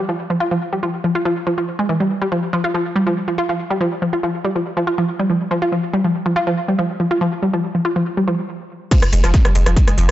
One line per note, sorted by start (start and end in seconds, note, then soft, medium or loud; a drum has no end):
0.09 0.16 F3 medium
0.30 0.35 F3 medium
0.40 0.48 F4 medium
0.51 0.59 F3 medium
0.73 0.78 G3 medium
0.83 0.91 F3 medium
1.04 1.09 F3 medium
1.15 1.23 F4 medium
1.25 1.33 F3 medium
1.47 1.52 F3 medium
1.58 1.63 F3 medium
1.79 1.82 G#3 medium
1.89 1.97 E3 medium
2.00 2.03 G3 medium
2.22 2.26 G3 medium
2.32 2.40 F3 medium
2.53 2.58 F3 medium
2.64 2.71 F4 medium
2.74 2.82 F3 medium
2.96 3.01 G3 medium
3.07 3.14 F3 medium
3.28 3.33 F3 medium
3.38 3.46 F4 medium
3.49 3.57 F3 medium
3.70 3.75 G3 medium
3.81 3.89 F3 medium
4.02 4.07 F3 medium
4.13 4.20 F4 medium
4.23 4.31 F3 medium
4.45 4.50 G3 medium
4.56 4.63 F3 medium
4.77 4.82 F3 medium
4.87 4.95 F4 medium
4.98 5.06 F3 medium
5.19 5.24 G3 medium
5.30 5.38 F3 medium
5.51 5.56 F3 medium
5.62 5.69 F4 medium
5.72 5.80 F3 medium
5.93 5.99 G3 medium
6.04 6.12 F3 medium
6.26 6.31 F3 medium
6.36 6.44 F4 medium
6.47 6.54 F3 medium
6.68 6.73 G3 medium
6.79 6.87 F3 medium
7.00 7.05 F3 medium
7.11 7.18 F4 medium
7.21 7.29 F3 medium
7.42 7.48 G3 medium
7.53 7.61 F3 medium
7.75 7.80 F3 medium
7.85 7.93 F4 medium
7.96 8.03 F3 medium
8.17 8.22 G3 medium
8.28 8.36 F3 medium
8.91 8.97 F3 medium
8.91 kick loud
8.91 closed hi-hat medium
8.91 crash loud
8.91 ride medium
9.02 9.12 F1 medium
9.02 cross-stick medium
9.02 closed hi-hat medium
9.12 9.23 F1 loud
9.12 9.18 G#3 medium
9.12 open hi-hat loud
9.12 ride medium
9.24 9.34 F1 medium
9.24 9.29 F3 loud
9.24 cross-stick medium
9.24 closed hi-hat medium
9.24 ride soft
9.34 kick loud
9.34 snare loud
9.34 closed hi-hat medium
9.34 ride medium
9.45 9.50 G3 medium
9.45 cross-stick medium
9.45 closed hi-hat medium
9.55 9.66 F1 loud
9.55 9.61 G#3 medium
9.55 open hi-hat loud
9.55 ride medium
9.66 9.76 F1 medium
9.66 9.71 F3 medium
9.66 cross-stick medium
9.66 closed hi-hat medium
9.76 kick loud
9.76 closed hi-hat medium
9.76 ride medium
9.88 9.97 F1 medium
9.88 9.92 G#3 medium
9.88 cross-stick medium
9.88 closed hi-hat medium
9.98 10.08 F1 loud
9.98 10.03 F3 loud
9.98 open hi-hat loud
9.98 ride medium